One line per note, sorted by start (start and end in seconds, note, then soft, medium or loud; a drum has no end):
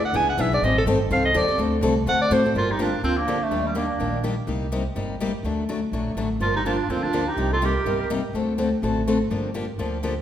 0.00 0.13 D2 loud
0.05 0.17 F#5 loud
0.13 0.37 C#2 medium
0.13 0.32 E3 medium
0.13 0.32 B3 medium
0.13 0.32 D4 medium
0.13 0.32 G#4 medium
0.13 0.29 G#5 loud
0.29 0.42 F#5 medium
0.37 0.61 B1 loud
0.37 0.48 E3 medium
0.37 0.49 B3 loud
0.37 0.49 D4 loud
0.37 0.49 G#4 loud
0.37 0.53 E5 medium
0.52 0.63 B3 medium
0.52 0.62 D4 medium
0.52 0.62 G#4 medium
0.52 0.66 D5 medium
0.62 0.85 A1 medium
0.62 0.81 D#3 medium
0.62 0.81 G3 medium
0.62 0.81 C4 medium
0.62 0.81 G4 medium
0.62 0.81 A4 medium
0.62 0.77 D#5 loud
0.78 0.84 A4 medium
0.86 1.10 G1 loud
0.86 0.97 D#3 loud
0.86 0.97 G3 loud
0.86 0.97 C4 medium
0.86 0.97 G4 loud
0.86 0.97 A4 loud
1.10 1.34 C2 medium
1.10 1.28 D#3 medium
1.10 1.29 G3 medium
1.10 1.29 C4 medium
1.10 1.29 G4 medium
1.10 1.29 A4 medium
1.10 1.24 F5 medium
1.25 1.39 D#5 loud
1.34 1.47 D#2 medium
1.34 1.45 D#3 loud
1.34 1.45 G3 loud
1.34 1.45 C4 loud
1.34 1.45 G4 loud
1.34 1.45 A4 loud
1.34 1.60 D5 loud
1.48 1.58 C4 medium
1.48 1.59 G4 medium
1.48 1.58 A4 medium
1.48 muted upright bass stroke soft
1.58 1.81 D2 loud
1.58 1.76 D3 medium
1.58 1.76 A3 medium
1.58 1.77 C4 medium
1.58 1.77 F#4 medium
1.58 1.77 A4 medium
1.81 2.05 C2 loud
1.81 1.93 D3 loud
1.81 1.93 A3 loud
1.81 1.93 C4 loud
1.81 1.93 F#4 loud
1.81 1.93 A4 loud
2.06 2.30 D2 medium
2.06 2.25 D3 medium
2.06 2.25 A3 medium
2.06 2.25 C4 medium
2.06 2.25 F#4 medium
2.06 2.25 A4 medium
2.06 2.21 F#5 loud
2.21 2.34 D5 loud
2.31 2.53 A2 medium
2.31 2.41 D3 medium
2.31 2.41 A3 loud
2.31 2.41 C4 loud
2.31 2.41 F#4 loud
2.31 2.41 A4 loud
2.31 2.51 C5 medium
2.45 2.55 C4 medium
2.45 2.55 F#4 medium
2.45 2.55 A4 medium
2.54 2.93 G1 medium
2.54 2.73 D3 medium
2.54 2.73 F3 medium
2.54 2.73 A#3 medium
2.54 2.73 D4 medium
2.54 2.73 F4 medium
2.54 2.73 G4 medium
2.54 2.68 A#4 medium
2.69 2.80 D#4 medium
2.69 2.80 G4 medium
2.79 2.89 D3 medium
2.79 2.89 F3 medium
2.79 2.89 A#3 medium
2.79 2.89 D4 medium
2.79 3.03 D4 medium
2.79 3.02 F4 medium
2.79 2.90 G4 medium
3.03 3.41 D2 medium
3.03 3.21 D3 medium
3.03 3.21 F3 medium
3.03 3.22 A#3 medium
3.03 3.19 C4 medium
3.03 3.22 D4 medium
3.03 3.16 F4 medium
3.03 3.22 G4 medium
3.17 3.44 A#3 medium
3.17 3.41 D4 medium
3.28 3.38 D3 medium
3.28 3.38 F3 medium
3.28 3.38 A#3 medium
3.28 3.38 D4 medium
3.28 3.38 G4 medium
3.42 3.68 A3 medium
3.42 3.66 D4 medium
3.51 3.90 D#2 medium
3.51 3.69 D#3 medium
3.51 3.69 G3 medium
3.51 3.69 A#3 medium
3.51 3.70 D4 medium
3.51 3.70 G4 medium
3.66 3.78 G3 medium
3.66 3.76 A#3 medium
3.75 3.85 D#3 medium
3.75 3.85 G3 medium
3.75 3.86 A#3 medium
3.75 4.25 A#3 medium
3.75 3.86 D4 medium
3.75 4.24 D4 medium
3.75 3.86 G4 medium
3.99 4.38 A#1 medium
3.99 4.18 D#3 medium
3.99 4.18 G3 medium
3.99 4.18 A#3 medium
3.99 4.18 D4 medium
3.99 4.18 G4 medium
4.23 4.34 D#3 medium
4.23 4.34 G3 medium
4.23 4.34 A#3 medium
4.23 4.34 D4 medium
4.23 4.34 G4 medium
4.47 4.86 C2 medium
4.47 4.66 C3 medium
4.47 4.66 G3 medium
4.47 4.66 A#3 medium
4.47 4.66 D#4 medium
4.47 4.66 G4 medium
4.72 4.82 C3 medium
4.72 4.82 G3 medium
4.72 4.82 A#3 medium
4.72 4.82 D#4 medium
4.72 4.83 G4 medium
4.95 5.34 G1 medium
4.95 5.14 C3 medium
4.95 5.14 G3 medium
4.95 5.14 A#3 medium
4.95 5.14 D#4 medium
4.95 5.14 G4 medium
5.20 5.31 C3 medium
5.20 5.31 G3 medium
5.20 5.31 A#3 medium
5.20 5.31 D#4 medium
5.20 5.31 G4 loud
5.43 5.82 D2 medium
5.43 5.62 D3 medium
5.43 5.63 F#3 medium
5.43 5.63 A3 medium
5.43 5.63 D4 medium
5.43 5.63 F#4 medium
5.69 5.79 D3 medium
5.69 5.79 F#3 medium
5.69 5.79 A3 medium
5.69 5.79 D4 medium
5.69 5.79 F#4 medium
5.91 6.13 A#1 medium
5.91 6.11 D3 medium
5.91 6.11 F#3 medium
5.91 6.11 A3 medium
5.91 6.11 D4 medium
5.91 6.12 F#4 medium
6.15 6.36 A1 medium
6.15 6.27 D3 medium
6.15 6.27 F#3 medium
6.15 6.27 A3 medium
6.15 6.27 D4 medium
6.15 6.28 F#4 medium
6.40 6.79 G1 medium
6.40 6.59 D3 medium
6.40 6.59 F3 medium
6.40 6.59 A#3 medium
6.40 6.59 D4 medium
6.40 6.54 F4 medium
6.40 6.59 G4 medium
6.40 6.54 A#4 medium
6.55 6.61 D#4 medium
6.55 6.60 G4 medium
6.65 6.75 D3 medium
6.65 6.76 F3 medium
6.65 6.76 A#3 medium
6.65 6.91 D4 medium
6.65 6.76 D4 medium
6.65 6.88 F4 medium
6.65 6.76 G4 medium
6.88 7.28 D2 medium
6.88 7.08 D3 medium
6.88 7.07 F3 medium
6.88 7.08 A#3 medium
6.88 7.04 C4 medium
6.88 7.08 D4 medium
6.88 7.02 F4 medium
6.88 7.08 G4 medium
7.03 7.30 D4 medium
7.03 7.28 F4 medium
7.13 7.23 D3 medium
7.13 7.24 F3 medium
7.13 7.24 A#3 medium
7.13 7.24 D4 medium
7.13 7.24 G4 medium
7.27 7.52 D#4 medium
7.27 7.51 G4 medium
7.37 7.76 C2 medium
7.37 7.55 C3 medium
7.37 7.55 G3 medium
7.37 7.56 A#3 medium
7.37 7.56 D#4 medium
7.37 7.56 G4 medium
7.52 7.66 F4 medium
7.52 7.62 A4 medium
7.61 7.72 C3 medium
7.61 7.72 G3 medium
7.61 7.72 A#3 medium
7.61 7.72 D#4 medium
7.61 7.72 G4 medium
7.61 8.12 G4 medium
7.61 8.11 A#4 medium
7.85 8.24 G1 medium
7.85 8.04 C3 medium
7.85 8.04 G3 medium
7.85 8.04 A#3 medium
7.85 8.04 D#4 medium
7.85 8.04 G4 medium
8.10 8.20 C3 medium
8.10 8.20 G3 medium
8.10 8.20 A#3 medium
8.10 8.21 D#4 medium
8.10 8.21 G4 loud
8.33 8.72 D2 medium
8.33 8.52 D3 medium
8.33 8.52 A3 medium
8.33 8.53 C4 medium
8.33 8.53 F#4 medium
8.33 8.53 A4 medium
8.58 8.68 D3 medium
8.58 8.68 A3 medium
8.58 8.68 C4 medium
8.58 8.69 F#4 medium
8.58 8.69 A4 medium
8.82 9.21 A1 medium
8.82 9.01 D3 medium
8.82 9.01 A3 medium
8.82 9.01 C4 medium
8.82 9.01 F#4 medium
8.82 9.01 A4 medium
9.07 9.17 D3 medium
9.07 9.17 A3 medium
9.07 9.17 C4 medium
9.07 9.18 F#4 medium
9.07 9.18 A4 medium
9.30 9.69 G1 medium
9.30 9.49 D3 medium
9.30 9.49 F3 medium
9.30 9.49 A#3 medium
9.30 9.49 D4 medium
9.30 9.49 G4 medium
9.54 9.65 D3 medium
9.54 9.65 F3 medium
9.54 9.65 A#3 medium
9.54 9.65 D4 loud
9.54 9.65 G4 medium
9.78 10.17 D2 medium
9.78 9.97 D3 medium
9.78 9.97 F3 medium
9.78 9.97 A#3 medium
9.78 9.97 D4 medium
9.78 9.97 G4 medium
10.03 10.13 D3 medium
10.03 10.13 F3 medium
10.03 10.13 A#3 medium
10.03 10.13 D4 medium
10.03 10.14 G4 medium